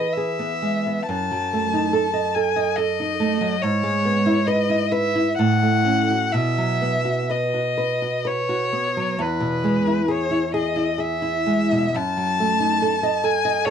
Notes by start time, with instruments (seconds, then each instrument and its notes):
Already playing: nylon-string guitar E3 B4, violin D#5
0.12 violin E5
0.17 nylon-string guitar G#4
0.39 nylon-string guitar B3
0.62 nylon-string guitar G#3
0.87 nylon-string guitar B3
1.07 nylon-string guitar F#2, violin A5
1.31 nylon-string guitar F#3
1.53 nylon-string guitar A3
1.73 nylon-string guitar D#4
1.93 nylon-string guitar A4
2.14 nylon-string guitar D#5
2.34 nylon-string guitar A4, violin G#5
2.56 nylon-string guitar D#5
2.76 nylon-string guitar A4, violin D#5
3.00 nylon-string guitar D#4
3.20 nylon-string guitar A3
3.41 nylon-string guitar F#3
3.62 nylon-string guitar G#2, violin C#5
3.83 nylon-string guitar G#3
4.05 nylon-string guitar B3
4.26 nylon-string guitar E4
4.47 nylon-string guitar B4, violin D#5
4.70 nylon-string guitar E4
4.92 nylon-string guitar B4, violin E5
5.15 nylon-string guitar E4
5.38 nylon-string guitar A2, violin F#5
5.63 nylon-string guitar A3
5.85 nylon-string guitar C#4
6.10 nylon-string guitar F#4
6.32 nylon-string guitar B2, violin E5
6.58 nylon-string guitar F#3
6.82 nylon-string guitar B3
7.05 nylon-string guitar F#4
7.30 nylon-string guitar B4, violin D#5
7.54 nylon-string guitar F#4
7.78 nylon-string guitar B4
8.02 nylon-string guitar F#4
8.25 nylon-string guitar B4, violin C#5
8.49 nylon-string guitar F#4
8.73 nylon-string guitar B3
8.97 nylon-string guitar F#3
9.19 nylon-string guitar E2, violin B4
9.40 nylon-string guitar B2
9.64 nylon-string guitar G#3
9.87 nylon-string guitar E4
10.08 nylon-string guitar G#4, violin C#5
10.31 nylon-string guitar E4
10.54 nylon-string guitar G#4, violin D#5
10.76 nylon-string guitar E4
10.98 nylon-string guitar G#4, violin E5
11.22 nylon-string guitar E4
11.46 nylon-string guitar G#3
11.72 nylon-string guitar B2
11.94 nylon-string guitar F#2, violin A5
12.17 nylon-string guitar F#3
12.40 nylon-string guitar A3
12.60 nylon-string guitar D#4
12.82 nylon-string guitar A4
13.03 nylon-string guitar D#5
13.24 nylon-string guitar A4, violin G#5
13.45 nylon-string guitar D#5
13.64 nylon-string guitar A4, violin C#5